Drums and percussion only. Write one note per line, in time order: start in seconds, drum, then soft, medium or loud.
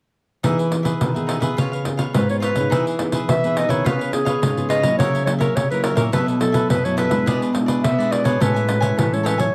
0.44 pandeiro medium
0.59 pandeiro soft
0.72 pandeiro medium
0.85 pandeiro medium
1.01 pandeiro medium
1.16 pandeiro soft
1.29 pandeiro medium
1.42 pandeiro medium
1.58 pandeiro medium
1.73 pandeiro soft
1.85 pandeiro medium
1.99 pandeiro medium
2.14 pandeiro medium
2.29 pandeiro soft
2.42 pandeiro medium
2.56 pandeiro soft
2.72 pandeiro medium
2.87 pandeiro soft
2.99 pandeiro medium
3.12 pandeiro medium
3.29 pandeiro medium
3.44 pandeiro soft
3.57 pandeiro medium
3.70 pandeiro medium
3.86 pandeiro medium
4.01 pandeiro soft
4.13 pandeiro medium
4.26 pandeiro medium
4.43 pandeiro medium
4.57 pandeiro soft
4.70 pandeiro medium
4.83 pandeiro medium
5.00 pandeiro medium
5.15 pandeiro soft
5.27 pandeiro medium
5.41 pandeiro medium
5.57 pandeiro medium
5.71 pandeiro soft
5.84 pandeiro medium
5.97 pandeiro medium
6.13 pandeiro medium
6.28 pandeiro soft
6.41 pandeiro medium
6.54 pandeiro medium
6.70 pandeiro medium
6.85 pandeiro soft
6.98 pandeiro medium
7.11 pandeiro medium
7.27 pandeiro medium
7.42 pandeiro soft
7.55 pandeiro medium
7.68 pandeiro medium
7.84 pandeiro medium
8.00 pandeiro soft
8.12 pandeiro medium
8.25 pandeiro medium
8.41 pandeiro medium
8.56 pandeiro soft
8.69 pandeiro medium
8.82 pandeiro medium
8.98 pandeiro medium
9.14 pandeiro soft
9.26 pandeiro medium
9.39 pandeiro medium